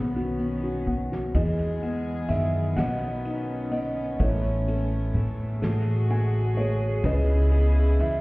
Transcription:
Already playing: upright bass B1, string section D#3 B3 C#4, felt piano B3 C#5 G#5
0.16 felt piano F#4
0.39 felt piano B3, closed hi-hat
0.64 felt piano F#4
0.87 felt piano B3, kick
1.12 felt piano F#4, snare
1.34 upright bass E2, felt piano E3 G#4 D#5, string section G#3 B3 G#4, kick, ride
1.82 felt piano B3, ride
2.29 upright bass F#2, felt piano D#3 E5, ride
2.76 upright bass B1, felt piano B2 D#5 F#5, string section D#3 C#4, snare, ride
3.25 felt piano D#4, ride
3.71 felt piano B3 D#5, ride
4.20 upright bass A1, felt piano A3 E4 C#5, string section A3, kick, ride
4.68 felt piano A3, ride
5.14 upright bass A2, felt piano A3, ride
5.60 upright bass A1, felt piano A3, string section F#4 G#4, snare, ride
6.10 felt piano A3 G#5, ride
6.57 felt piano A3 C#5, ride
7.03 upright bass C#2, string section C#3 B3 E4, felt piano C#3 B4 D#5, kick, ride
7.51 felt piano G#4, ride
7.99 upright bass E2, felt piano E4 E5, ride

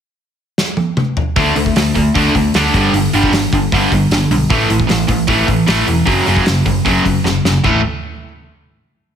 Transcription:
0.58 snare
0.77 high tom
0.97 mid tom
1.17 floor tom
1.36 picked electric bass D2, distorted electric guitar D3 A3 D4, kick, open hi-hat
1.56 picked electric bass D2, distorted electric guitar D3 A3, open hi-hat
1.66 kick
1.76 picked electric bass D2, distorted electric guitar D3 A3, snare, open hi-hat
1.95 picked electric bass D2, distorted electric guitar D3 A3, kick, open hi-hat
2.15 picked electric bass D2, distorted electric guitar D3 A3 D4, kick, open hi-hat
2.35 picked electric bass D2, distorted electric guitar D3 A3, kick, open hi-hat
2.54 picked electric bass D2, distorted electric guitar D3 A3 D4, snare, open hi-hat
2.74 picked electric bass G1, distorted electric guitar G2 D3 G3, kick, open hi-hat
2.93 picked electric bass G1, distorted electric guitar G2 D3, open hi-hat
3.13 picked electric bass G1, distorted electric guitar G2 D3 G3, open hi-hat
3.23 kick
3.32 picked electric bass G1, distorted electric guitar G2 D3, snare, open hi-hat
3.53 picked electric bass G1, distorted electric guitar G2 D3, kick, open hi-hat
3.72 picked electric bass G1, distorted electric guitar G2 D3 G3, kick, open hi-hat
3.92 picked electric bass G1, distorted electric guitar G2 D3, kick, open hi-hat
4.10 picked electric bass G1, distorted electric guitar G2 D3, snare, open hi-hat
4.30 picked electric bass B1, distorted electric guitar G2 D3, open hi-hat
4.50 picked electric bass A1, distorted electric guitar A2 E3 A3, kick, open hi-hat
4.70 picked electric bass A1, distorted electric guitar A2 E3, open hi-hat
4.80 kick
4.89 picked electric bass A1, distorted electric guitar A2 E3, snare, open hi-hat
5.08 picked electric bass A1, distorted electric guitar A2 E3, kick, open hi-hat
5.28 picked electric bass A1, distorted electric guitar A2 E3 A3, kick, open hi-hat
5.47 picked electric bass A1, distorted electric guitar A2 E3, kick, open hi-hat
5.67 picked electric bass A1, distorted electric guitar A2 E3 A3, snare, open hi-hat
5.87 picked electric bass E1, distorted electric guitar A2 E3, open hi-hat
6.06 picked electric bass F#1, distorted electric guitar F#2 C#3 F#3, kick, open hi-hat
6.26 picked electric bass F#1, distorted electric guitar F#2 C#3 F#3, open hi-hat
6.37 kick
6.46 picked electric bass F#1, distorted electric guitar F#2 C#3, snare, open hi-hat
6.66 picked electric bass F#1, distorted electric guitar F#2 C#3, kick, open hi-hat
6.85 picked electric bass F#1, distorted electric guitar F#2 C#3 F#3, kick, open hi-hat
7.05 picked electric bass F#1, distorted electric guitar F#2 C#3, kick, open hi-hat
7.24 picked electric bass F#1, distorted electric guitar F#2 C#3, snare
7.44 picked electric bass F#1, distorted electric guitar F#2 C#3, snare
7.64 picked electric bass A1, distorted electric guitar A2 E3 A3, kick, floor tom

